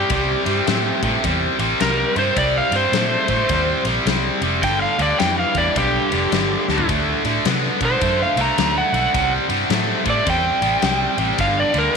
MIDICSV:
0, 0, Header, 1, 5, 480
1, 0, Start_track
1, 0, Tempo, 564440
1, 90, Time_signature, 4, 2, 24, 8
1, 10177, End_track
2, 0, Start_track
2, 0, Title_t, "Electric slide guitar"
2, 0, Program_c, 0, 29
2, 0, Note_on_c, 0, 67, 90
2, 1179, Note_off_c, 0, 67, 0
2, 1544, Note_on_c, 0, 70, 99
2, 1851, Note_off_c, 0, 70, 0
2, 1860, Note_on_c, 0, 72, 96
2, 2013, Note_off_c, 0, 72, 0
2, 2021, Note_on_c, 0, 74, 88
2, 2174, Note_off_c, 0, 74, 0
2, 2188, Note_on_c, 0, 77, 89
2, 2338, Note_off_c, 0, 77, 0
2, 2345, Note_on_c, 0, 72, 91
2, 3273, Note_off_c, 0, 72, 0
2, 3944, Note_on_c, 0, 79, 106
2, 4097, Note_off_c, 0, 79, 0
2, 4100, Note_on_c, 0, 77, 79
2, 4254, Note_off_c, 0, 77, 0
2, 4265, Note_on_c, 0, 74, 84
2, 4410, Note_on_c, 0, 79, 84
2, 4417, Note_off_c, 0, 74, 0
2, 4569, Note_off_c, 0, 79, 0
2, 4585, Note_on_c, 0, 77, 78
2, 4737, Note_off_c, 0, 77, 0
2, 4742, Note_on_c, 0, 74, 87
2, 4895, Note_off_c, 0, 74, 0
2, 4911, Note_on_c, 0, 67, 93
2, 5835, Note_off_c, 0, 67, 0
2, 6675, Note_on_c, 0, 72, 91
2, 6975, Note_off_c, 0, 72, 0
2, 6993, Note_on_c, 0, 77, 86
2, 7139, Note_off_c, 0, 77, 0
2, 7153, Note_on_c, 0, 82, 101
2, 7454, Note_off_c, 0, 82, 0
2, 7464, Note_on_c, 0, 78, 101
2, 7924, Note_off_c, 0, 78, 0
2, 8586, Note_on_c, 0, 74, 101
2, 8734, Note_off_c, 0, 74, 0
2, 8756, Note_on_c, 0, 79, 107
2, 9674, Note_off_c, 0, 79, 0
2, 9700, Note_on_c, 0, 77, 91
2, 9850, Note_off_c, 0, 77, 0
2, 9862, Note_on_c, 0, 74, 91
2, 10011, Note_off_c, 0, 74, 0
2, 10021, Note_on_c, 0, 70, 91
2, 10170, Note_off_c, 0, 70, 0
2, 10177, End_track
3, 0, Start_track
3, 0, Title_t, "Distorted electric guitar"
3, 0, Program_c, 1, 30
3, 93, Note_on_c, 1, 48, 73
3, 95, Note_on_c, 1, 55, 85
3, 363, Note_off_c, 1, 48, 0
3, 365, Note_off_c, 1, 55, 0
3, 390, Note_on_c, 1, 48, 63
3, 394, Note_on_c, 1, 55, 71
3, 553, Note_off_c, 1, 48, 0
3, 555, Note_off_c, 1, 55, 0
3, 574, Note_on_c, 1, 48, 76
3, 576, Note_on_c, 1, 57, 80
3, 845, Note_off_c, 1, 48, 0
3, 846, Note_off_c, 1, 57, 0
3, 881, Note_on_c, 1, 48, 73
3, 882, Note_on_c, 1, 57, 78
3, 1039, Note_off_c, 1, 48, 0
3, 1040, Note_off_c, 1, 57, 0
3, 1062, Note_on_c, 1, 48, 81
3, 1064, Note_on_c, 1, 55, 97
3, 1330, Note_off_c, 1, 48, 0
3, 1331, Note_off_c, 1, 55, 0
3, 1360, Note_on_c, 1, 48, 68
3, 1365, Note_on_c, 1, 55, 85
3, 1519, Note_off_c, 1, 48, 0
3, 1522, Note_off_c, 1, 55, 0
3, 1536, Note_on_c, 1, 48, 70
3, 1538, Note_on_c, 1, 55, 82
3, 1807, Note_off_c, 1, 48, 0
3, 1808, Note_off_c, 1, 55, 0
3, 1837, Note_on_c, 1, 48, 74
3, 1845, Note_on_c, 1, 55, 80
3, 1998, Note_off_c, 1, 48, 0
3, 2002, Note_off_c, 1, 55, 0
3, 2022, Note_on_c, 1, 48, 70
3, 2024, Note_on_c, 1, 55, 84
3, 2290, Note_off_c, 1, 48, 0
3, 2291, Note_off_c, 1, 55, 0
3, 2323, Note_on_c, 1, 48, 71
3, 2325, Note_on_c, 1, 55, 78
3, 2481, Note_off_c, 1, 48, 0
3, 2483, Note_off_c, 1, 55, 0
3, 2510, Note_on_c, 1, 48, 74
3, 2511, Note_on_c, 1, 57, 76
3, 2775, Note_off_c, 1, 48, 0
3, 2775, Note_off_c, 1, 57, 0
3, 2799, Note_on_c, 1, 48, 79
3, 2805, Note_on_c, 1, 57, 85
3, 2960, Note_off_c, 1, 48, 0
3, 2963, Note_off_c, 1, 57, 0
3, 2981, Note_on_c, 1, 48, 87
3, 2983, Note_on_c, 1, 55, 85
3, 3250, Note_off_c, 1, 48, 0
3, 3251, Note_off_c, 1, 55, 0
3, 3287, Note_on_c, 1, 48, 66
3, 3287, Note_on_c, 1, 55, 94
3, 3444, Note_off_c, 1, 48, 0
3, 3444, Note_off_c, 1, 55, 0
3, 3469, Note_on_c, 1, 48, 80
3, 3469, Note_on_c, 1, 55, 98
3, 3734, Note_off_c, 1, 48, 0
3, 3734, Note_off_c, 1, 55, 0
3, 3766, Note_on_c, 1, 48, 69
3, 3770, Note_on_c, 1, 55, 83
3, 3924, Note_off_c, 1, 48, 0
3, 3926, Note_off_c, 1, 55, 0
3, 3943, Note_on_c, 1, 43, 76
3, 3952, Note_on_c, 1, 50, 81
3, 4212, Note_off_c, 1, 43, 0
3, 4216, Note_off_c, 1, 50, 0
3, 4244, Note_on_c, 1, 43, 67
3, 4248, Note_on_c, 1, 50, 78
3, 4403, Note_off_c, 1, 43, 0
3, 4405, Note_off_c, 1, 50, 0
3, 4423, Note_on_c, 1, 43, 72
3, 4428, Note_on_c, 1, 52, 69
3, 4691, Note_off_c, 1, 43, 0
3, 4694, Note_off_c, 1, 52, 0
3, 4731, Note_on_c, 1, 43, 71
3, 4737, Note_on_c, 1, 52, 78
3, 4886, Note_off_c, 1, 43, 0
3, 4889, Note_off_c, 1, 52, 0
3, 4907, Note_on_c, 1, 43, 85
3, 4915, Note_on_c, 1, 50, 86
3, 5173, Note_off_c, 1, 43, 0
3, 5177, Note_off_c, 1, 50, 0
3, 5205, Note_on_c, 1, 43, 66
3, 5213, Note_on_c, 1, 50, 75
3, 5363, Note_off_c, 1, 43, 0
3, 5367, Note_off_c, 1, 50, 0
3, 5393, Note_on_c, 1, 43, 68
3, 5396, Note_on_c, 1, 50, 82
3, 5656, Note_off_c, 1, 43, 0
3, 5657, Note_off_c, 1, 50, 0
3, 5694, Note_on_c, 1, 43, 74
3, 5701, Note_on_c, 1, 50, 78
3, 5847, Note_off_c, 1, 43, 0
3, 5850, Note_off_c, 1, 50, 0
3, 5869, Note_on_c, 1, 50, 76
3, 5871, Note_on_c, 1, 57, 74
3, 6134, Note_off_c, 1, 50, 0
3, 6134, Note_off_c, 1, 57, 0
3, 6169, Note_on_c, 1, 50, 71
3, 6176, Note_on_c, 1, 57, 72
3, 6324, Note_off_c, 1, 50, 0
3, 6328, Note_off_c, 1, 57, 0
3, 6349, Note_on_c, 1, 50, 68
3, 6353, Note_on_c, 1, 59, 77
3, 6613, Note_off_c, 1, 50, 0
3, 6615, Note_off_c, 1, 59, 0
3, 6653, Note_on_c, 1, 50, 65
3, 6655, Note_on_c, 1, 59, 78
3, 6805, Note_off_c, 1, 50, 0
3, 6807, Note_off_c, 1, 59, 0
3, 6825, Note_on_c, 1, 50, 88
3, 6831, Note_on_c, 1, 57, 92
3, 7091, Note_off_c, 1, 50, 0
3, 7093, Note_off_c, 1, 57, 0
3, 7124, Note_on_c, 1, 57, 85
3, 7126, Note_on_c, 1, 50, 79
3, 7281, Note_off_c, 1, 50, 0
3, 7281, Note_off_c, 1, 57, 0
3, 7296, Note_on_c, 1, 50, 76
3, 7305, Note_on_c, 1, 57, 99
3, 7566, Note_off_c, 1, 50, 0
3, 7570, Note_off_c, 1, 57, 0
3, 7600, Note_on_c, 1, 50, 74
3, 7608, Note_on_c, 1, 57, 79
3, 7758, Note_off_c, 1, 50, 0
3, 7762, Note_off_c, 1, 57, 0
3, 7776, Note_on_c, 1, 48, 78
3, 7777, Note_on_c, 1, 55, 79
3, 8045, Note_off_c, 1, 48, 0
3, 8046, Note_off_c, 1, 55, 0
3, 8074, Note_on_c, 1, 48, 71
3, 8077, Note_on_c, 1, 55, 79
3, 8235, Note_off_c, 1, 48, 0
3, 8236, Note_off_c, 1, 55, 0
3, 8251, Note_on_c, 1, 48, 73
3, 8256, Note_on_c, 1, 57, 84
3, 8522, Note_off_c, 1, 48, 0
3, 8525, Note_off_c, 1, 57, 0
3, 8551, Note_on_c, 1, 48, 70
3, 8554, Note_on_c, 1, 57, 79
3, 8713, Note_off_c, 1, 48, 0
3, 8714, Note_off_c, 1, 57, 0
3, 8726, Note_on_c, 1, 48, 80
3, 8728, Note_on_c, 1, 55, 88
3, 8999, Note_off_c, 1, 48, 0
3, 9000, Note_off_c, 1, 55, 0
3, 9032, Note_on_c, 1, 48, 69
3, 9035, Note_on_c, 1, 55, 79
3, 9193, Note_off_c, 1, 48, 0
3, 9194, Note_off_c, 1, 55, 0
3, 9209, Note_on_c, 1, 48, 85
3, 9214, Note_on_c, 1, 55, 88
3, 9480, Note_off_c, 1, 48, 0
3, 9483, Note_off_c, 1, 55, 0
3, 9510, Note_on_c, 1, 48, 79
3, 9511, Note_on_c, 1, 55, 81
3, 9671, Note_off_c, 1, 48, 0
3, 9672, Note_off_c, 1, 55, 0
3, 9683, Note_on_c, 1, 43, 81
3, 9685, Note_on_c, 1, 50, 87
3, 9957, Note_off_c, 1, 43, 0
3, 9958, Note_off_c, 1, 50, 0
3, 9984, Note_on_c, 1, 43, 68
3, 9988, Note_on_c, 1, 50, 87
3, 10148, Note_off_c, 1, 43, 0
3, 10150, Note_off_c, 1, 50, 0
3, 10177, End_track
4, 0, Start_track
4, 0, Title_t, "Fingered electric bass"
4, 0, Program_c, 2, 33
4, 87, Note_on_c, 2, 36, 91
4, 283, Note_off_c, 2, 36, 0
4, 391, Note_on_c, 2, 43, 85
4, 507, Note_off_c, 2, 43, 0
4, 576, Note_on_c, 2, 45, 95
4, 769, Note_off_c, 2, 45, 0
4, 873, Note_on_c, 2, 45, 81
4, 989, Note_off_c, 2, 45, 0
4, 1052, Note_on_c, 2, 40, 84
4, 1247, Note_off_c, 2, 40, 0
4, 1352, Note_on_c, 2, 33, 73
4, 1468, Note_off_c, 2, 33, 0
4, 1534, Note_on_c, 2, 36, 86
4, 1728, Note_off_c, 2, 36, 0
4, 1835, Note_on_c, 2, 43, 90
4, 1951, Note_off_c, 2, 43, 0
4, 2012, Note_on_c, 2, 36, 96
4, 2208, Note_off_c, 2, 36, 0
4, 2308, Note_on_c, 2, 43, 86
4, 2427, Note_off_c, 2, 43, 0
4, 2484, Note_on_c, 2, 46, 89
4, 2682, Note_off_c, 2, 46, 0
4, 2796, Note_on_c, 2, 45, 92
4, 2912, Note_off_c, 2, 45, 0
4, 2975, Note_on_c, 2, 39, 90
4, 3170, Note_off_c, 2, 39, 0
4, 3273, Note_on_c, 2, 34, 69
4, 3390, Note_off_c, 2, 34, 0
4, 3449, Note_on_c, 2, 36, 88
4, 3646, Note_off_c, 2, 36, 0
4, 3752, Note_on_c, 2, 29, 90
4, 3936, Note_off_c, 2, 29, 0
4, 3936, Note_on_c, 2, 31, 92
4, 4130, Note_off_c, 2, 31, 0
4, 4240, Note_on_c, 2, 38, 90
4, 4355, Note_off_c, 2, 38, 0
4, 4427, Note_on_c, 2, 41, 87
4, 4618, Note_off_c, 2, 41, 0
4, 4719, Note_on_c, 2, 40, 74
4, 4834, Note_off_c, 2, 40, 0
4, 4897, Note_on_c, 2, 35, 85
4, 5091, Note_off_c, 2, 35, 0
4, 5208, Note_on_c, 2, 29, 83
4, 5320, Note_off_c, 2, 29, 0
4, 5374, Note_on_c, 2, 31, 85
4, 5569, Note_off_c, 2, 31, 0
4, 5682, Note_on_c, 2, 38, 82
4, 5796, Note_off_c, 2, 38, 0
4, 5862, Note_on_c, 2, 38, 87
4, 6053, Note_off_c, 2, 38, 0
4, 6162, Note_on_c, 2, 45, 85
4, 6276, Note_off_c, 2, 45, 0
4, 6340, Note_on_c, 2, 48, 101
4, 6532, Note_off_c, 2, 48, 0
4, 6636, Note_on_c, 2, 47, 84
4, 6751, Note_off_c, 2, 47, 0
4, 6819, Note_on_c, 2, 42, 77
4, 7011, Note_off_c, 2, 42, 0
4, 7110, Note_on_c, 2, 36, 71
4, 7227, Note_off_c, 2, 36, 0
4, 7296, Note_on_c, 2, 38, 93
4, 7489, Note_off_c, 2, 38, 0
4, 7590, Note_on_c, 2, 35, 92
4, 7706, Note_off_c, 2, 35, 0
4, 7777, Note_on_c, 2, 36, 99
4, 7969, Note_off_c, 2, 36, 0
4, 8073, Note_on_c, 2, 43, 85
4, 8189, Note_off_c, 2, 43, 0
4, 8246, Note_on_c, 2, 45, 104
4, 8442, Note_off_c, 2, 45, 0
4, 8549, Note_on_c, 2, 45, 94
4, 8665, Note_off_c, 2, 45, 0
4, 8732, Note_on_c, 2, 40, 89
4, 8925, Note_off_c, 2, 40, 0
4, 9028, Note_on_c, 2, 33, 69
4, 9145, Note_off_c, 2, 33, 0
4, 9204, Note_on_c, 2, 36, 89
4, 9399, Note_off_c, 2, 36, 0
4, 9502, Note_on_c, 2, 33, 91
4, 9620, Note_off_c, 2, 33, 0
4, 9683, Note_on_c, 2, 31, 89
4, 9879, Note_off_c, 2, 31, 0
4, 9985, Note_on_c, 2, 38, 84
4, 10102, Note_off_c, 2, 38, 0
4, 10177, End_track
5, 0, Start_track
5, 0, Title_t, "Drums"
5, 82, Note_on_c, 9, 51, 84
5, 87, Note_on_c, 9, 36, 118
5, 167, Note_off_c, 9, 51, 0
5, 172, Note_off_c, 9, 36, 0
5, 393, Note_on_c, 9, 51, 62
5, 478, Note_off_c, 9, 51, 0
5, 572, Note_on_c, 9, 51, 80
5, 577, Note_on_c, 9, 38, 110
5, 657, Note_off_c, 9, 51, 0
5, 662, Note_off_c, 9, 38, 0
5, 873, Note_on_c, 9, 36, 87
5, 874, Note_on_c, 9, 51, 69
5, 958, Note_off_c, 9, 36, 0
5, 959, Note_off_c, 9, 51, 0
5, 1054, Note_on_c, 9, 36, 103
5, 1057, Note_on_c, 9, 51, 82
5, 1139, Note_off_c, 9, 36, 0
5, 1142, Note_off_c, 9, 51, 0
5, 1355, Note_on_c, 9, 51, 69
5, 1440, Note_off_c, 9, 51, 0
5, 1534, Note_on_c, 9, 51, 82
5, 1539, Note_on_c, 9, 38, 100
5, 1619, Note_off_c, 9, 51, 0
5, 1624, Note_off_c, 9, 38, 0
5, 1838, Note_on_c, 9, 51, 66
5, 1923, Note_off_c, 9, 51, 0
5, 2011, Note_on_c, 9, 51, 89
5, 2013, Note_on_c, 9, 36, 112
5, 2096, Note_off_c, 9, 51, 0
5, 2098, Note_off_c, 9, 36, 0
5, 2312, Note_on_c, 9, 51, 69
5, 2397, Note_off_c, 9, 51, 0
5, 2494, Note_on_c, 9, 51, 85
5, 2499, Note_on_c, 9, 38, 99
5, 2579, Note_off_c, 9, 51, 0
5, 2584, Note_off_c, 9, 38, 0
5, 2791, Note_on_c, 9, 51, 72
5, 2794, Note_on_c, 9, 36, 82
5, 2876, Note_off_c, 9, 51, 0
5, 2879, Note_off_c, 9, 36, 0
5, 2969, Note_on_c, 9, 51, 91
5, 2973, Note_on_c, 9, 36, 96
5, 3054, Note_off_c, 9, 51, 0
5, 3058, Note_off_c, 9, 36, 0
5, 3273, Note_on_c, 9, 51, 69
5, 3358, Note_off_c, 9, 51, 0
5, 3458, Note_on_c, 9, 51, 83
5, 3463, Note_on_c, 9, 38, 98
5, 3543, Note_off_c, 9, 51, 0
5, 3548, Note_off_c, 9, 38, 0
5, 3756, Note_on_c, 9, 51, 63
5, 3841, Note_off_c, 9, 51, 0
5, 3936, Note_on_c, 9, 51, 87
5, 3938, Note_on_c, 9, 36, 99
5, 4021, Note_off_c, 9, 51, 0
5, 4023, Note_off_c, 9, 36, 0
5, 4245, Note_on_c, 9, 51, 63
5, 4330, Note_off_c, 9, 51, 0
5, 4419, Note_on_c, 9, 51, 77
5, 4424, Note_on_c, 9, 38, 102
5, 4504, Note_off_c, 9, 51, 0
5, 4509, Note_off_c, 9, 38, 0
5, 4717, Note_on_c, 9, 51, 62
5, 4719, Note_on_c, 9, 36, 76
5, 4802, Note_off_c, 9, 51, 0
5, 4805, Note_off_c, 9, 36, 0
5, 4898, Note_on_c, 9, 51, 83
5, 4900, Note_on_c, 9, 36, 104
5, 4983, Note_off_c, 9, 51, 0
5, 4985, Note_off_c, 9, 36, 0
5, 5202, Note_on_c, 9, 51, 66
5, 5287, Note_off_c, 9, 51, 0
5, 5376, Note_on_c, 9, 51, 84
5, 5381, Note_on_c, 9, 38, 91
5, 5461, Note_off_c, 9, 51, 0
5, 5466, Note_off_c, 9, 38, 0
5, 5686, Note_on_c, 9, 38, 60
5, 5764, Note_on_c, 9, 43, 77
5, 5771, Note_off_c, 9, 38, 0
5, 5849, Note_off_c, 9, 43, 0
5, 5858, Note_on_c, 9, 51, 89
5, 5860, Note_on_c, 9, 36, 107
5, 5943, Note_off_c, 9, 51, 0
5, 5945, Note_off_c, 9, 36, 0
5, 6162, Note_on_c, 9, 51, 67
5, 6247, Note_off_c, 9, 51, 0
5, 6338, Note_on_c, 9, 51, 102
5, 6343, Note_on_c, 9, 38, 109
5, 6423, Note_off_c, 9, 51, 0
5, 6428, Note_off_c, 9, 38, 0
5, 6638, Note_on_c, 9, 51, 70
5, 6639, Note_on_c, 9, 36, 82
5, 6723, Note_off_c, 9, 51, 0
5, 6724, Note_off_c, 9, 36, 0
5, 6814, Note_on_c, 9, 51, 81
5, 6818, Note_on_c, 9, 36, 103
5, 6899, Note_off_c, 9, 51, 0
5, 6903, Note_off_c, 9, 36, 0
5, 7119, Note_on_c, 9, 51, 77
5, 7204, Note_off_c, 9, 51, 0
5, 7297, Note_on_c, 9, 51, 82
5, 7302, Note_on_c, 9, 38, 109
5, 7382, Note_off_c, 9, 51, 0
5, 7387, Note_off_c, 9, 38, 0
5, 7602, Note_on_c, 9, 51, 64
5, 7687, Note_off_c, 9, 51, 0
5, 7776, Note_on_c, 9, 36, 114
5, 7777, Note_on_c, 9, 51, 90
5, 7861, Note_off_c, 9, 36, 0
5, 7862, Note_off_c, 9, 51, 0
5, 8075, Note_on_c, 9, 51, 71
5, 8160, Note_off_c, 9, 51, 0
5, 8250, Note_on_c, 9, 51, 86
5, 8255, Note_on_c, 9, 38, 105
5, 8335, Note_off_c, 9, 51, 0
5, 8340, Note_off_c, 9, 38, 0
5, 8551, Note_on_c, 9, 51, 69
5, 8552, Note_on_c, 9, 36, 84
5, 8636, Note_off_c, 9, 51, 0
5, 8637, Note_off_c, 9, 36, 0
5, 8730, Note_on_c, 9, 51, 80
5, 8731, Note_on_c, 9, 36, 107
5, 8815, Note_off_c, 9, 51, 0
5, 8816, Note_off_c, 9, 36, 0
5, 9031, Note_on_c, 9, 51, 62
5, 9116, Note_off_c, 9, 51, 0
5, 9203, Note_on_c, 9, 51, 78
5, 9208, Note_on_c, 9, 38, 106
5, 9288, Note_off_c, 9, 51, 0
5, 9293, Note_off_c, 9, 38, 0
5, 9506, Note_on_c, 9, 51, 64
5, 9591, Note_off_c, 9, 51, 0
5, 9680, Note_on_c, 9, 51, 85
5, 9684, Note_on_c, 9, 36, 104
5, 9765, Note_off_c, 9, 51, 0
5, 9769, Note_off_c, 9, 36, 0
5, 9983, Note_on_c, 9, 51, 64
5, 10068, Note_off_c, 9, 51, 0
5, 10177, End_track
0, 0, End_of_file